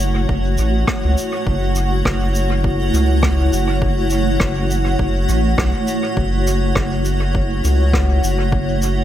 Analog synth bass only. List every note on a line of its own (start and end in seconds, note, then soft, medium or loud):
0.00 0.27 F#1 loud
0.29 0.58 F#1 medium
0.58 0.85 A1 loud
1.04 1.16 C#2 medium
1.47 2.03 F#1 loud
2.06 2.91 F#1 loud
2.94 3.50 C#2 medium
3.53 4.38 F#1 medium
4.40 4.97 F#1 loud
4.99 5.28 F#1 medium
5.29 5.55 A1 loud
5.58 5.73 B1 loud
6.17 6.73 F#1 loud
6.76 7.62 F#1 loud
7.64 8.21 C#2 medium
8.24 9.04 F#1 medium